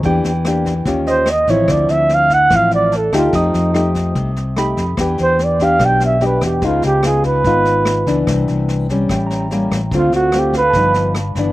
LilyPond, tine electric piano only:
\new Staff \with { instrumentName = "Tine electric piano" } { \time 4/4 \key d \dorian \tempo 4 = 146 g''2~ g''16 r16 ees''4. | r2. a''4 | ees'''2~ ees'''16 r8. b''4~ | b''8 r2. r8 |
r1 | r2 g''16 bes''4.~ bes''16 | r4. f''16 a''16 b''4 r4 | }